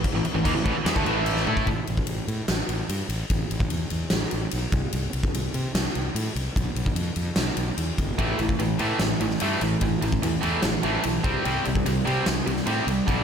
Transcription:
0.04 kick, crash
0.14 A1 A2 E3
0.24 muted overdriven electric guitar stroke, muted fingered electric bass stroke, muted distorted electric guitar stroke, crash
0.35 A1 A2 E3
0.44 D#2 D#3 A#3, kick, crash
0.55 A1 A2 E3
0.65 A1 A2 E3, kick, crash
0.74 muted overdriven electric guitar stroke, muted fingered electric bass stroke, muted distorted electric guitar stroke
0.85 E2 E3 B3, snare, crash
0.95 D2 D3 A3, kick
1.05 A1 A2 E3 A3, crash
1.26 crash
1.36 snare
1.46 A2 A3 E4 A4, high tom
1.57 kick
1.67 A1, kick, ride
1.87 A1, ride
1.97 kick
2.07 A1, ride
2.28 A2, ride
2.48 A1, snare, ride
2.69 A1, ride
2.89 G2, ride
3.09 A1, ride
3.30 A1, kick, ride
3.50 A1, ride
3.60 kick
3.70 E2, ride
3.90 E2, ride
4.10 A1, snare, ride
4.31 A1, ride
4.51 B1, ride
4.72 C2, kick, ride
4.92 C2, ride
5.13 C2, ride
5.23 kick
5.34 C2, ride
5.54 C3, ride
5.74 C2, snare, ride
5.95 C2, ride
6.15 A2, ride
6.35 C2, ride
6.56 B1, kick, ride
6.75 B1, ride
6.86 kick
6.95 F2, ride
7.16 F2, ride
7.36 B1, snare, ride
7.57 B1, ride
7.78 E2, ride
7.98 G1, kick, ride
8.19 A1 A2 E3 A3, kick, ride
8.39 A1 A2 E3, ride
8.49 kick
8.59 A1 A2 E3, ride
8.78 A2 E3 A3, ride
8.99 A1 A2 E3, snare, ride
9.20 A1 A2 E3, ride
9.30 snare
9.40 G2 A2 E3 A3, ride
9.61 A1 A2 E3, ride
9.81 A1 A2 E3, kick, ride
10.02 A1 A2 E3, ride
10.12 kick
10.23 E2 A2 E3, ride
10.43 E2 A2 E3 A3, ride
10.63 A1 A2 E3, snare, ride
10.83 A1 A2 E3 A3, ride
11.03 B1 A2 E3, ride
11.24 C2 C3 G3 C4, kick, ride
11.44 C2 C3 G3 C4, ride
11.65 C2 C3 G3, ride
11.75 kick
11.86 C2 C3 G3, ride
12.05 C3 G3 C4, ride
12.26 C2 C3 G3, snare, ride
12.46 C2 C3 G3, ride
12.57 snare
12.66 A2 C3 G3 C4, ride
12.87 C2 C3 G3, ride
13.07 B1 G2 D3 G3, kick, ride

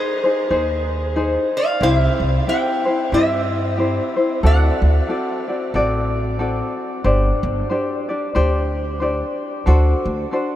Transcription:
Already playing: D#4 G#4 C5
0.24 D#4 G#4 C5
0.50 D#2 D#4 G#4 C5
1.16 D#4 G#4 C5
1.57 D5 F5
1.81 C2 C4 E4 G4 C5 F5
1.94 E5
2.20 C2
2.47 C4 E4 G4 C5 E5 G5
2.85 C4 E4 C5
3.12 G2 C4 E4 G4 C5 E5
3.77 C4 E4 G4 C5
4.16 C4 E4 C5
4.43 D2 C4 F#4 A4 D5 F#5
4.82 D2
5.08 C4 F#4 A4 D5
5.48 C4 F#4 D5
5.74 A1 C4 F#4 A4 D5
6.39 C4 F#4 A4 D5
7.04 G1 D4 G4 C5 D5
7.43 G1
7.70 D4 G4 C5 D5
8.09 D4 G4 D5
8.35 D2 D4 G4 C5 D5
9.00 D4 G4 C5 D5
9.66 D2 D4 F#4 A4 C5
10.06 D2
10.31 D4 F#4 A4 C5

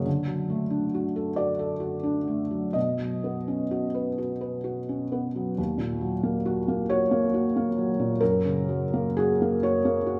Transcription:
0.05 D3
0.27 F#3
0.50 A3
0.70 D4
0.94 F#4
1.16 A4
1.36 F#4 D5
1.59 A4
1.80 F#4
2.03 D4
2.27 A3
2.51 F#3
2.73 B2 D#5
2.98 F#3
3.24 B3
3.48 C#4
3.71 F#4
3.94 B4
4.18 F#4
4.41 B4
4.64 F#4
4.89 C#4
5.12 B3
5.36 F#3
5.58 D#2
5.78 A#2
6.01 F#3
6.23 A#3
6.46 F#4
6.68 A#3
6.90 F#4 C#5
7.11 A#3
7.34 F#4
7.56 A#3
7.78 F#3
8.00 A#2
8.20 F#2 A#4
8.45 C#3
8.69 F#3
8.94 A#3
9.17 F#4 G#4
9.42 A#3
9.63 F#4 C#5
9.85 A#3
10.07 F#4

